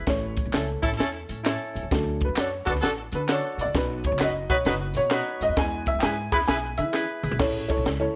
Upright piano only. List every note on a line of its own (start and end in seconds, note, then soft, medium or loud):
0.07 0.80 E3 medium
0.07 0.80 A3 medium
0.07 0.80 C#4 medium
0.07 0.55 C#5 loud
0.54 1.71 A4 medium
1.91 2.26 F#3 medium
1.91 2.26 A3 medium
1.91 2.27 D4 medium
1.91 2.24 A4 medium
2.25 2.39 B4 medium
2.39 2.69 C#5 medium
2.69 2.84 B4 medium
2.85 2.92 A4 medium
3.15 3.29 B4 medium
3.31 3.61 C#5 medium
3.61 3.76 D5 loud
3.75 5.53 F#3 medium
3.75 5.54 B3 medium
3.75 5.54 D#4 medium
3.75 4.06 B4 medium
4.06 4.22 C#5 medium
4.23 4.52 D#5 medium
4.51 4.67 C#5 loud
4.67 4.94 B4 medium
4.97 5.43 C#5 loud
5.42 5.58 D#5 loud
5.58 7.36 G#3 medium
5.58 7.36 B3 medium
5.58 7.37 E4 medium
5.58 5.89 G#5 loud
5.88 6.00 E5 loud
5.99 6.03 G5 medium
5.99 6.34 G#5 loud
6.32 6.49 B5 loud
6.48 6.79 G#5 loud
6.78 6.93 E5 loud
7.39 7.61 C#4 medium
7.39 7.61 E4 medium
7.39 7.61 A4 medium
7.39 7.61 C#5 loud
7.68 7.87 C#4 medium
7.68 7.87 E4 medium
7.68 7.88 A4 medium
7.68 7.88 C#5 loud
8.00 8.16 C#4 medium
8.00 8.16 E4 medium
8.00 8.16 A4 medium
8.00 8.16 C#5 medium